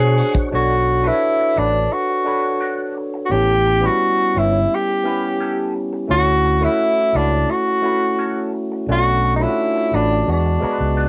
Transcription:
Already playing: B2 D4 F#4 G#4 C5 C#5 F#5 C#6
0.00 closed hi-hat
0.17 muted clean electric guitar stroke, open hi-hat
0.35 muted clean electric guitar stroke, kick, closed hi-hat
0.51 B1 D4 F#4 A4 C#5
0.87 muted clean electric guitar stroke
1.03 D4 E4 F#4 A4 B4
1.13 C#5
1.40 muted clean electric guitar stroke
1.57 A1 D4 F#4 B4
1.74 muted clean electric guitar stroke
1.93 F#4
2.09 muted clean electric guitar stroke
2.25 D4 F#4 A4 B4 C#5
2.44 muted clean electric guitar stroke
2.61 D4 F#4 A4
2.96 muted clean electric guitar stroke
3.14 muted clean electric guitar stroke
3.25 B3 F#4
3.30 A1 C#4 E4 G4 A4
3.67 muted clean electric guitar stroke
3.81 G3 B3 C#4 E4 G4 B4
3.85 C#4 F#4
4.18 muted clean electric guitar stroke
4.36 G1 C#4 E4 G4 B4
4.53 muted clean electric guitar stroke
4.75 G4
4.89 muted clean electric guitar stroke
5.03 B3 C#4 E4 G4 B4
5.23 muted clean electric guitar stroke
5.41 C#4 G4 A4
5.75 muted clean electric guitar stroke
5.93 muted clean electric guitar stroke
6.08 D2 A3 C#4 E4 F#4
6.12 A4
6.45 muted clean electric guitar stroke
6.61 A3 C#4 E4 F#4 B4 C#5
6.98 muted clean electric guitar stroke
7.14 C#2 C#4 D4 F#4 B4
7.32 muted clean electric guitar stroke
7.51 F#4
7.67 muted clean electric guitar stroke
7.82 A3 C#4 E4 F#4 B4
8.02 muted clean electric guitar stroke
8.19 C#4 F#4 A4
8.53 muted clean electric guitar stroke
8.72 muted clean electric guitar stroke
8.88 B1 A3 C#4 D4 F#4 A4
9.24 muted clean electric guitar stroke
9.36 A3 D#4
9.40 D4 E4 F4 F#4 B4 C#5
9.49 F#4
9.76 muted clean electric guitar stroke
9.93 A1 D4 F#4 B4
10.11 muted clean electric guitar stroke
10.26 E2 G#3 B3 D4 F#4
10.32 D4
10.46 muted clean electric guitar stroke
10.60 G#3 B3 D4 F#4 B4, muted fingered electric bass stroke
10.80 C#2, muted clean electric guitar stroke
10.97 B3 D4 G#4

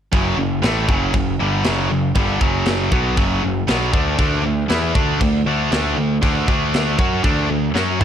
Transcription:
0.13 F#1 F#2 C#3 F#3, kick, china
0.37 F#1 F#2 C#3
0.62 A1 A2 E3 A3, snare, china
0.89 F#1 F#2 C#3 F#3, kick
1.13 F#1 F#2 C#3, kick, china
1.40 G1 G2 D3 G3
1.64 F#1 F#2 C#3 F#3, snare, china
1.90 F#1 F#2 C#3
2.15 G1 G2 D3 G3, kick, china
2.40 F#1 F#2 C#3 F#3, kick
2.66 snare, china
2.91 B1 B2 F#3 B3, kick
3.16 F#1 F#2 C#3 F#3, kick, china
3.42 F#1 F#2 C#3
3.68 B1 B2 F#3 B3, snare, china
3.92 D2 D3 A3 D4, kick
4.18 D2 D3 A3 D4, kick, china
4.43 D2 D3 A3
4.69 E2 E3 B3 E4, snare, china
4.94 D2 D3 A3 D4, kick
5.20 D2 D3 A3, kick, china
5.46 D2 D3 A3 D4
5.71 D2 D3 A3 D4, snare, china
5.97 D2 D3 A3
6.22 D2 D3 A3 D4, kick, china
6.48 D2 D3 A3 D4, kick
6.74 snare, china
6.98 F#2 F#3 C#4 F#4, kick
7.24 D2 D3 A3 D4, kick, china
7.49 D2 D3 A3
7.74 F#2 F#3 C#4 F#4, snare
8.00 A2 A3 E4, mid tom

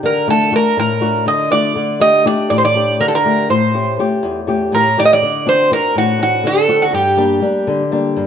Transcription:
0.03 D3 A#4
0.28 A3 D4 F#4 A4
0.52 A3 D4 F#4 A#4
0.77 A2 A#4
1.01 A3 D4 F#4
1.26 D3 D#5
1.51 A3 D4 F#4 D5
1.76 D3
2.00 A3 D4 G4 D#5
2.25 A3 D4 G4 D5
2.50 A2 D5
2.58 C5
2.65 D5
2.75 A3 D4 G4
3.00 D3 A#4
3.08 A4
3.15 A#4
3.25 A3 D4 G4
3.50 A2 C5
3.74 A3 C#4 G4
3.99 A3 C#4 G4
4.23 E2
4.47 A3 C#4 G4
4.72 A2 A#4
4.97 A3 C#4 G4 D5
5.05 D#5
5.13 D5
5.22 D3
5.46 C4 D4 F#4 C5
5.71 C4 D4 F#4 A#4
5.95 A2 F#4
6.19 C4 D4 F#4
6.44 D3 A4
6.68 C4 D4 F#4
6.82 F#4
6.93 G2 G4
7.17 G3 A#3 D4
7.42 G3 A#3 D4
7.67 D3
7.92 G3 A#3 D4
8.17 G2

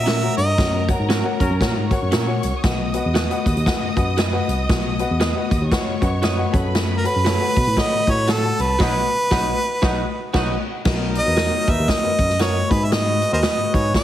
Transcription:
Already playing: A#2 A#4 E5 A#5
0.06 C#4 F#4 A#4, snare, closed hi-hat
0.22 F#4 A#4 C#5 F#5
0.37 G2 D#5, closed hi-hat
0.58 F#2 F#4 A#4 C#5 F#5, kick, snare, closed hi-hat
0.88 F#4 A#4 C#5 F#5, kick, closed hi-hat
0.99 G#2
1.09 F#3 C#4 F#4 A#4, snare, closed hi-hat
1.24 F#4 A#4 C#5 F#5
1.40 F#2 F#3 C#4 A#4, kick, closed hi-hat
1.50 F#2
1.60 A#2 F#4 A#4 C#5 F#5, kick, snare, closed hi-hat
1.76 G#2
1.91 F#4 A#4 C#5 F#5 C#6, kick, closed hi-hat
2.02 F#2
2.12 A#2 C#4 F#4 A#4, snare, closed hi-hat
2.27 F#4 A#4 C#5 F#5
2.43 C2, closed hi-hat
2.62 B1 B2 F#4 B4 D#5 F#5 D#6, kick, snare, closed hi-hat
2.94 F#4 B4 D#5 F#5, closed hi-hat
3.06 E2
3.14 F#4 B4 D#5, snare, closed hi-hat
3.30 F#4 B4 D#5 F#5, closed hi-hat
3.46 D#2, kick, closed hi-hat
3.57 D#2, closed hi-hat
3.66 F#4 B4 D#5 F#5, kick, snare, closed hi-hat
3.82 F#2
3.97 F#2 F#4 B4 D#5 F#5, kick, closed hi-hat
4.17 F#4 B4 D#5, snare, closed hi-hat
4.33 F#4 B4 D#5 F#5
4.49 C2, closed hi-hat
4.69 B1 B2 F#4 B4 D#5 F#5, kick, snare, closed hi-hat
4.99 F#4 B4 D#5 F#5, closed hi-hat
5.10 E2
5.20 F#4 B4 D#5, snare, closed hi-hat
5.35 F#4 B4 D#5 F#5
5.51 D#2, kick, closed hi-hat
5.62 D#2
5.72 F#4 B4 C#5 D#5 F#5 C#6, kick, snare, closed hi-hat
5.87 F#2
6.01 F#2 F#4 B4 D#5 F#5, kick, closed hi-hat
6.22 F#4 B4 D#5, snare, closed hi-hat
6.37 F#4 B4 D#5 F#5
6.52 F#2 F#4 A4 B4 C#5 F#5 B5, kick, closed hi-hat
6.75 snare, closed hi-hat
6.97 A#4
7.04 F#4 A4 B4 C#5 F#5, closed hi-hat
7.16 F#2
7.25 F#4 A4 C#5, snare, closed hi-hat
7.40 F#4 A4 C#5 F#5
7.57 B2, kick, closed hi-hat
7.67 A2, closed hi-hat
7.77 F#4 A4 C#5 D#5 F#5, kick, snare, closed hi-hat
7.93 A2
8.07 A2 F#4 A4 C#5 F#5, kick, closed hi-hat
8.27 F#4 A4 C#5 A5, snare, closed hi-hat
8.43 F#4 A4 C#5 F#5
8.59 C2 B4, closed hi-hat
8.79 B1 B2 F#3 D#4 F#4 B4 D#5 F#5, kick, snare, crash
9.31 B1 F#3 D#4 F#4 B4 D#5 F#5, kick, snare
9.81 B1 F#3 D#4 F#4 B4 D#5 F#5, kick, snare
10.33 B1 F#3 D#4 F#4 B4 D#5 F#5, kick, snare, crash
10.85 B1 B2 F#3 D#4 F#4 A#4 B4 D#5, kick, snare, crash
11.15 D#5, closed hi-hat
11.26 E2 F#4 A#4 B4 D#5
11.37 F#4 A#4 D#5, snare, closed hi-hat
11.67 D#2 F#4 A#4 B4 D#5 E5, kick, closed hi-hat
11.79 D#2
11.88 D#5, kick, snare, closed hi-hat
12.03 F#2 F#4 A#4 B4 D#5
12.19 F#2, kick, closed hi-hat
12.30 snare
12.39 F#4 A#4 B4 C#5 D#5, snare, closed hi-hat
12.70 G#2 G#3 F#4 G#4 B4 D#5, kick, closed hi-hat
12.85 E5
12.92 D#5, snare, closed hi-hat
13.22 closed hi-hat
13.32 D#2 F#4 G#4 A#4 B4 C5 D#5
13.43 F#4 B4 D#5, snare, closed hi-hat
13.58 G#2
13.73 G#2 F#4 G#4 B4 C#5 D#5, kick, closed hi-hat
13.94 D#5, kick, snare, closed hi-hat

